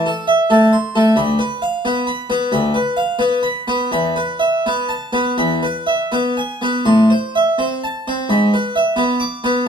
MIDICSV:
0, 0, Header, 1, 2, 480
1, 0, Start_track
1, 0, Tempo, 675676
1, 835, Time_signature, 4, 2, 24, 8
1, 2289, Tempo, 731707
1, 5169, Tempo, 691244
1, 6605, End_track
2, 0, Start_track
2, 0, Title_t, "Harpsichord"
2, 0, Program_c, 0, 6
2, 43, Note_on_c, 0, 69, 57
2, 195, Note_on_c, 0, 76, 61
2, 210, Note_off_c, 0, 69, 0
2, 356, Note_on_c, 0, 69, 60
2, 359, Note_on_c, 0, 57, 55
2, 366, Note_off_c, 0, 76, 0
2, 517, Note_on_c, 0, 84, 66
2, 525, Note_off_c, 0, 69, 0
2, 527, Note_off_c, 0, 57, 0
2, 678, Note_on_c, 0, 69, 58
2, 681, Note_on_c, 0, 57, 57
2, 684, Note_off_c, 0, 84, 0
2, 825, Note_on_c, 0, 38, 73
2, 829, Note_on_c, 0, 83, 89
2, 835, Note_off_c, 0, 69, 0
2, 837, Note_off_c, 0, 57, 0
2, 983, Note_off_c, 0, 38, 0
2, 987, Note_on_c, 0, 71, 59
2, 998, Note_off_c, 0, 83, 0
2, 1151, Note_on_c, 0, 77, 62
2, 1156, Note_off_c, 0, 71, 0
2, 1314, Note_on_c, 0, 59, 61
2, 1316, Note_on_c, 0, 71, 67
2, 1319, Note_off_c, 0, 77, 0
2, 1471, Note_on_c, 0, 83, 64
2, 1482, Note_off_c, 0, 59, 0
2, 1483, Note_off_c, 0, 71, 0
2, 1632, Note_on_c, 0, 59, 57
2, 1632, Note_on_c, 0, 71, 63
2, 1642, Note_off_c, 0, 83, 0
2, 1790, Note_on_c, 0, 38, 68
2, 1792, Note_on_c, 0, 83, 68
2, 1804, Note_off_c, 0, 59, 0
2, 1804, Note_off_c, 0, 71, 0
2, 1948, Note_on_c, 0, 71, 56
2, 1951, Note_off_c, 0, 38, 0
2, 1965, Note_off_c, 0, 83, 0
2, 2107, Note_on_c, 0, 77, 59
2, 2126, Note_off_c, 0, 71, 0
2, 2265, Note_on_c, 0, 59, 52
2, 2265, Note_on_c, 0, 71, 54
2, 2290, Note_off_c, 0, 77, 0
2, 2424, Note_on_c, 0, 83, 61
2, 2441, Note_off_c, 0, 59, 0
2, 2441, Note_off_c, 0, 71, 0
2, 2587, Note_on_c, 0, 59, 54
2, 2588, Note_on_c, 0, 71, 56
2, 2599, Note_off_c, 0, 83, 0
2, 2745, Note_on_c, 0, 40, 61
2, 2749, Note_on_c, 0, 83, 79
2, 2753, Note_off_c, 0, 59, 0
2, 2754, Note_off_c, 0, 71, 0
2, 2905, Note_on_c, 0, 71, 45
2, 2908, Note_off_c, 0, 40, 0
2, 2923, Note_off_c, 0, 83, 0
2, 3058, Note_on_c, 0, 76, 50
2, 3082, Note_off_c, 0, 71, 0
2, 3234, Note_on_c, 0, 59, 48
2, 3236, Note_on_c, 0, 71, 55
2, 3239, Note_off_c, 0, 76, 0
2, 3381, Note_on_c, 0, 81, 53
2, 3408, Note_off_c, 0, 59, 0
2, 3409, Note_off_c, 0, 71, 0
2, 3538, Note_on_c, 0, 59, 47
2, 3538, Note_on_c, 0, 71, 52
2, 3562, Note_off_c, 0, 81, 0
2, 3703, Note_on_c, 0, 83, 69
2, 3704, Note_on_c, 0, 40, 59
2, 3713, Note_off_c, 0, 59, 0
2, 3713, Note_off_c, 0, 71, 0
2, 3867, Note_on_c, 0, 71, 49
2, 3870, Note_off_c, 0, 40, 0
2, 3884, Note_off_c, 0, 83, 0
2, 4023, Note_on_c, 0, 76, 49
2, 4045, Note_off_c, 0, 71, 0
2, 4188, Note_on_c, 0, 71, 49
2, 4192, Note_on_c, 0, 59, 46
2, 4203, Note_off_c, 0, 76, 0
2, 4355, Note_on_c, 0, 80, 52
2, 4368, Note_off_c, 0, 71, 0
2, 4369, Note_off_c, 0, 59, 0
2, 4515, Note_on_c, 0, 59, 44
2, 4521, Note_on_c, 0, 71, 49
2, 4534, Note_off_c, 0, 80, 0
2, 4672, Note_on_c, 0, 45, 63
2, 4672, Note_on_c, 0, 84, 72
2, 4686, Note_off_c, 0, 59, 0
2, 4689, Note_off_c, 0, 71, 0
2, 4834, Note_on_c, 0, 72, 46
2, 4838, Note_off_c, 0, 45, 0
2, 4851, Note_off_c, 0, 84, 0
2, 4999, Note_on_c, 0, 76, 51
2, 5010, Note_off_c, 0, 72, 0
2, 5150, Note_on_c, 0, 60, 47
2, 5153, Note_on_c, 0, 72, 55
2, 5170, Note_off_c, 0, 76, 0
2, 5325, Note_on_c, 0, 81, 51
2, 5332, Note_off_c, 0, 60, 0
2, 5333, Note_off_c, 0, 72, 0
2, 5490, Note_on_c, 0, 72, 52
2, 5493, Note_on_c, 0, 60, 49
2, 5500, Note_off_c, 0, 81, 0
2, 5642, Note_on_c, 0, 44, 64
2, 5644, Note_on_c, 0, 83, 60
2, 5655, Note_off_c, 0, 72, 0
2, 5656, Note_off_c, 0, 60, 0
2, 5806, Note_off_c, 0, 44, 0
2, 5811, Note_on_c, 0, 71, 52
2, 5820, Note_off_c, 0, 83, 0
2, 5963, Note_on_c, 0, 76, 52
2, 5983, Note_off_c, 0, 71, 0
2, 6107, Note_on_c, 0, 59, 49
2, 6107, Note_on_c, 0, 71, 53
2, 6138, Note_off_c, 0, 76, 0
2, 6270, Note_on_c, 0, 86, 79
2, 6288, Note_off_c, 0, 59, 0
2, 6288, Note_off_c, 0, 71, 0
2, 6437, Note_on_c, 0, 59, 54
2, 6439, Note_on_c, 0, 71, 53
2, 6447, Note_off_c, 0, 86, 0
2, 6601, Note_off_c, 0, 59, 0
2, 6602, Note_off_c, 0, 71, 0
2, 6605, End_track
0, 0, End_of_file